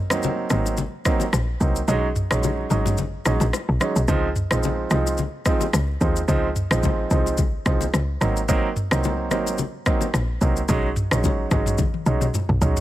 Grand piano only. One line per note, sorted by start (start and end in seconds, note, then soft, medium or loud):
0.10 0.47 F#3 medium
0.10 0.47 A#3 medium
0.10 0.47 C4 medium
0.10 0.48 D#4 medium
0.50 0.76 F#3 medium
0.50 0.76 A#3 medium
0.50 0.76 C4 medium
0.50 0.76 D#4 medium
1.05 1.24 F#3 medium
1.05 1.24 A#3 medium
1.05 1.24 C4 medium
1.05 1.24 D#4 medium
1.60 1.79 F#3 medium
1.60 1.79 A#3 medium
1.60 1.79 C4 medium
1.60 1.79 D#4 medium
1.88 2.06 F#3 loud
1.88 2.06 G#3 medium
1.88 2.06 C#4 medium
1.88 2.06 D#4 loud
2.31 2.68 F#3 medium
2.31 2.68 G#3 medium
2.31 2.68 C#4 medium
2.31 2.68 D#4 medium
2.71 2.96 F#3 medium
2.71 2.96 G#3 medium
2.71 2.96 C#4 medium
2.71 2.96 D#4 medium
3.26 3.44 F#3 medium
3.26 3.44 G#3 medium
3.26 3.44 C#4 medium
3.26 3.44 D#4 medium
3.80 3.99 F#3 medium
3.80 3.99 G#3 medium
3.80 3.99 C#4 medium
3.80 3.99 D#4 medium
4.08 4.26 F3 loud
4.08 4.27 G#3 medium
4.08 4.27 C4 medium
4.08 4.27 D#4 loud
4.51 4.88 F3 medium
4.51 4.88 G#3 medium
4.51 4.88 C4 medium
4.51 4.88 D#4 medium
4.91 5.16 F3 medium
4.91 5.16 G#3 medium
4.91 5.16 C4 medium
4.91 5.17 D#4 medium
5.46 5.64 F3 medium
5.46 5.64 G#3 medium
5.46 5.64 C4 medium
5.46 5.64 D#4 medium
6.01 6.19 F3 medium
6.01 6.19 G#3 medium
6.01 6.19 C4 medium
6.01 6.19 D#4 medium
6.28 6.46 F3 loud
6.28 6.47 G#3 medium
6.28 6.47 C4 medium
6.28 6.47 D#4 loud
6.71 7.08 F3 medium
6.71 7.08 G#3 medium
6.71 7.08 C4 medium
6.71 7.08 D#4 medium
7.11 7.37 F3 medium
7.11 7.37 G#3 medium
7.11 7.37 C4 medium
7.11 7.37 D#4 medium
7.65 7.84 F3 medium
7.65 7.84 G#3 medium
7.65 7.84 C4 medium
7.65 7.84 D#4 medium
8.21 8.39 F#3 medium
8.21 8.39 A#3 medium
8.21 8.39 C4 medium
8.21 8.39 D#4 medium
8.48 8.67 F#3 loud
8.48 8.67 A#3 medium
8.48 8.67 C4 medium
8.48 8.67 D#4 loud
8.91 9.28 F#3 medium
8.91 9.28 A#3 medium
8.91 9.28 C4 medium
8.91 9.28 D#4 medium
9.31 9.57 F#3 medium
9.31 9.57 A#3 medium
9.31 9.57 C4 medium
9.31 9.57 D#4 medium
9.86 10.04 F#3 medium
9.86 10.05 A#3 medium
9.86 10.05 C4 medium
9.86 10.05 D#4 medium
10.41 10.59 F#3 medium
10.41 10.60 A#3 medium
10.41 10.60 C4 medium
10.41 10.60 D#4 medium
10.69 10.87 F#3 loud
10.69 10.87 G#3 medium
10.69 10.87 C#4 medium
10.69 10.87 D#4 loud
11.11 11.48 F#3 medium
11.11 11.48 G#3 medium
11.11 11.49 C#4 medium
11.11 11.49 D#4 medium
11.51 11.77 F#3 medium
11.51 11.77 G#3 medium
11.51 11.77 C#4 medium
11.51 11.77 D#4 medium
12.06 12.25 F#3 medium
12.06 12.25 G#3 medium
12.06 12.25 C#4 medium
12.06 12.25 D#4 medium
12.61 12.80 F#3 medium
12.61 12.80 G#3 medium
12.61 12.80 C#4 medium
12.61 12.80 D#4 medium